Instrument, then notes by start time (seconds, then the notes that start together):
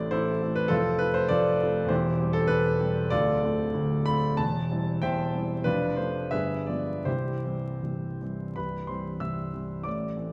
grand piano
Already playing: A1 A2 A3 C4 E4 D5
0.11 A1 A2 E4 A4 C5
0.42 A3 C4 E4
0.56 B4
0.68 F1 F2 C4 F4 A4
0.99 A3 C4 F4 B4
1.14 C5
1.29 F1 F2 F4 A4 D5
1.61 A3 C4 F4
1.85 E2 C5
1.90 E1 E4 G4
2.19 G3 C4 G4
2.33 A4
2.47 E1 E2 B4
2.80 G3 C4 G4
3.10 D1 D2 F4 A4 D5
3.43 A3 C4 F4
3.74 D1 D2
4.06 A3 C4 F4 B5
4.37 E1 E2 A5
4.71 G3 C4 E4
5.02 E1 E2 C5 E5 G5
5.34 G3 C4 E4
5.64 F1 F2 D4 F4 B4
5.97 F3 A3 D4 C5
6.31 G1 G2 G#4 B4 E5
6.67 F3 G#3 B3 D5
7.05 C1 C2 E4 G4 C5
7.44 E3 G3 C4
7.83 C1 C2
8.21 E3 G3 C4
8.56 C1 C2 B4 B5
8.87 E3 G3 C4 C5 C6
9.20 C1 C2 E5 E6
9.53 E3 G3 C4
9.83 A1 A2 D5 D6
10.17 E3 A3 C4